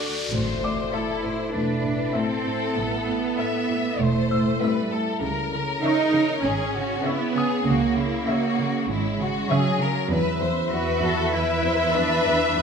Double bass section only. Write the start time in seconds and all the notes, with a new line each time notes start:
0.32 A1
1.54 E1
2.78 A1
4.00 E1
5.23 C#2
6.44 G#1
7.66 C#2
8.89 G#1
10.11 E2